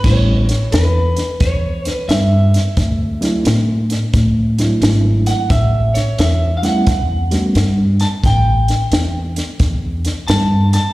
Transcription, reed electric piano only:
X:1
M:4/4
L:1/8
Q:"Swing" 1/4=88
K:Amix
V:1 name="Reed electric piano"
[G,A,B,CE] z6 z | z [F,A,=CDE] z3 [F,A,CDE]3 | z3 [G,A,B,CE] z [G,A,B,CF] z2 | z8 |]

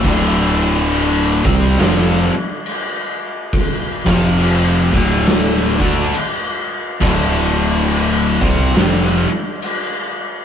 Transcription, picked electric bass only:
X:1
M:4/4
L:1/8
Q:"Swing" 1/4=69
K:Dm
V:1 name="Picked electric bass" clef=bass
D,,,3 C,, F,,, z3 | z F,,,2 D,,,2 D,, z2 | D,,,3 C,, F,,, z3 |]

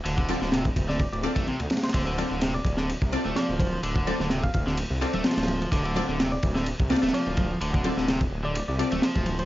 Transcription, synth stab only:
X:1
M:4/4
L:1/8
Q:"Swing 16ths" 1/4=127
K:Dm
V:1 name="Synth stab"
z [CFAd] z3 [CFAd] z2 | z [CFAd] z3 [CFAd] z2 | z [CFAd] z3 [CFAd] z2 | z [CFAd] z3 [CFAd] z2 |
z [CFAd] z3 [CFAd] z2 |]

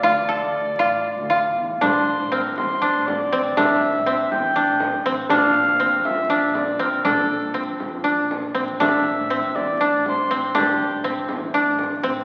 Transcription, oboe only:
X:1
M:7/8
L:1/8
Q:1/4=120
K:Aphr
V:1 name="Oboe"
d6 z | c2 B c2 d2 | e3 g3 z | f3 e e d B |
A2 z4 z | e3 d2 c2 | G2 z4 z |]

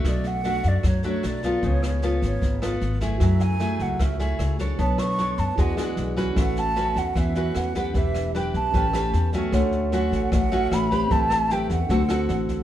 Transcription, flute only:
X:1
M:4/4
L:1/8
Q:1/4=152
K:A
V:1 name="Flute"
d f2 d c c d2 | c c2 c3 z2 | e g2 f e e z2 | a c'2 a g g z2 |
f a2 f e2 f2 | e2 =g a4 z | [K:D] z2 f2 f2 b2 | a2 g f4 z |]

